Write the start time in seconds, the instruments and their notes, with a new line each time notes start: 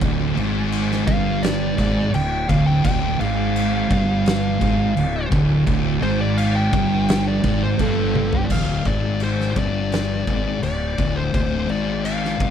0.00 fingered electric bass D1, distorted electric guitar D2, kick, crash
0.35 fingered electric bass G#1, distorted electric guitar G#2, crash
0.72 crash
0.91 snare
1.05 fingered electric bass G1, distorted electric guitar G2, lead electric guitar F5, kick, crash
1.43 lead electric guitar D5, snare, crash
1.77 fingered electric bass G#1, distorted electric guitar G#2, kick, crash
2.13 fingered electric bass D1, distorted electric guitar D2, lead electric guitar G5, crash
2.49 fingered electric bass D1, distorted electric guitar D2, lead electric guitar F5, kick, crash
2.67 lead electric guitar G5
2.83 fingered electric bass D1, distorted electric guitar D2, lead electric guitar G5, kick, crash
3.19 fingered electric bass G#1, distorted electric guitar G#2, lead electric guitar F5, crash
3.56 crash
3.89 fingered electric bass G1, distorted electric guitar G2, kick, crash
4.26 snare, crash
4.60 fingered electric bass G#1, distorted electric guitar G#2, kick, crash
4.96 fingered electric bass D1, distorted electric guitar D2, crash
5.31 fingered electric bass D1, distorted electric guitar D2, kick, crash
5.66 fingered electric bass D1, distorted electric guitar D2, kick, crash
6.02 fingered electric bass G#1, distorted electric guitar G#2, lead electric guitar C5, crash
6.21 lead electric guitar D5
6.38 lead electric guitar F5, crash
6.55 lead electric guitar G5
6.73 fingered electric bass G1, distorted electric guitar G2, kick, crash
7.08 snare, crash
7.28 lead electric guitar D5
7.43 fingered electric bass G#1, distorted electric guitar G#2, kick, crash
7.63 lead electric guitar C5
7.78 fingered electric bass G1, distorted electric guitar G2, lead electric guitar A4 F5, kick, crash
8.15 high tom
8.33 lead electric guitar G5, floor tom
8.44 lead electric guitar D5
8.48 fingered electric bass D1, distorted electric guitar D2, lead electric guitar F5, kick, crash
8.85 fingered electric bass G#1, distorted electric guitar G#2, lead electric guitar D5, kick, crash
9.20 lead electric guitar C5, crash
9.40 snare
9.56 fingered electric bass G1, distorted electric guitar G2, lead electric guitar D5, kick, crash
9.92 snare, crash
10.27 fingered electric bass G#1, distorted electric guitar G#2, kick, crash
10.62 fingered electric bass D1, distorted electric guitar D2, lead electric guitar D5, crash
10.98 fingered electric bass D1, distorted electric guitar D2, kick, crash
11.16 lead electric guitar C5
11.33 fingered electric bass D1, distorted electric guitar D2, lead electric guitar C5, kick, crash
11.68 fingered electric bass G#1, distorted electric guitar G#2, lead electric guitar D5, crash
12.05 lead electric guitar F5, crash
12.25 snare
12.39 fingered electric bass G1, distorted electric guitar G2, kick, crash